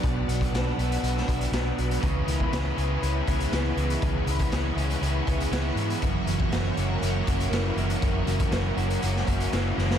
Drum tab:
HH |x-xxx-xxx-xxx-xx|x-x-x-x-x-xxx-xx|x-xxx-xxx-xxx-xx|x-x-x-x-x-xxx-xx|
SD |----o----o--o---|----o-------o---|----o-------o---|----o-------o---|
BD |o--o------o-----|o--o------o-----|o--o------o-----|o--o------o-----|

HH |x-xxx-xxx-xxx---|
SD |----o----o--o-oo|
BD |o--o------o-----|